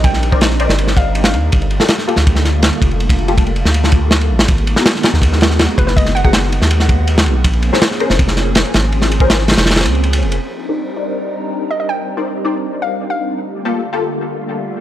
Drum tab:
RD |x---x---x---x---x---x---x---x---|x-x-x---x---x---x---x---x-x-x-x-|x-x-x-x-x-x-x---x---x-----x-----|x-x-x---x---x---x---x---x-x-x---|
SD |--o-----o-o---o---o-------o-----|------o-o-o---o---o-o---o-------|--------------o---o-----o-----o-|------o-o-o-o-o---o-o-o-o-----o-|
BD |o-----o-------------o-----------|o---------------o-----------o---|--o-----o-----------o-----------|o---------------o-----------o---|

RD |x---x---x---x---x---x---x---x---|x-x-x---x---x---x---x---x-x-x---|x---x---x---xxx-xxxxx-x-x-x-x-x-|--------------------------------|
SD |--o-----o-o---o---o-------o-----|------o-o-o---o---o-o---o---o---|--o-----o-o-ooo-oooo------------|--------------------------------|
BD |o-----o-------------o-----------|o---------------o---------------|------o-------------------------|--------------------------------|

RD |--------------------------------|--------------------------------|
SD |--------------------------------|--------------------------------|
BD |--------------------------------|--------------------------------|